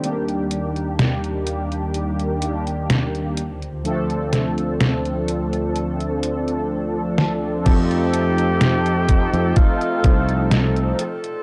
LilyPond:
<<
  \new Staff \with { instrumentName = "Ambient pad" } { \time 4/4 \key f \mixolydian \tempo 4 = 63 << { d''2.~ d''8 c''8~ | c''4. d''2~ d''8 | a''2.~ a''8 c'''8 | } \\ { <ees, ees g'>2.~ <ees, ees g'>8 <d, d f'>8~ | <d, d f'>1 | <f' c'' ees''>2.~ <f' c'' ees''>8 <a' d''>8 | } >> }
  \new Staff \with { instrumentName = "Alto saxophone" } { \time 4/4 \key f \mixolydian r1 | r1 | g'2 f'4 r8 a'8 | }
  \new Staff \with { instrumentName = "Analog polysynth" } { \time 4/4 \key f \mixolydian <ees g bes d' g'>2~ <ees g bes d' g'>8 <ees g bes d' g'>4 r8 | <f a c' d' a'>2. r4 | <f a c' ees' a'>2~ <f a c' ees' a'>8 <f a c' ees' a'>4 r8 | }
  \new Staff \with { instrumentName = "Fretless electric bass" } { \clef bass \time 4/4 \key f \mixolydian r1 | r1 | f,4.~ f,16 f,16 r8 c,4 r8 | }
  \new DrumStaff \with { instrumentName = "Drums" } \drummode { \time 4/4 hh16 hh16 hh16 hh16 <hh sn>16 hh16 hh16 hh16 hh16 hh16 hh16 hh16 <hh sn>16 hh16 hh16 hh16 | hh16 hh16 <hh sn>16 hh16 <hh sn>16 hh16 hh16 hh16 hh16 hh16 hh16 hh16 r8 sn8 | <cymc hh bd>16 hh16 hh16 hh16 <hh sn>16 hh16 <hh bd>16 hh16 <hh bd>16 hh16 <hh bd>16 hh16 <hh sn>16 hh16 hh16 hh16 | }
>>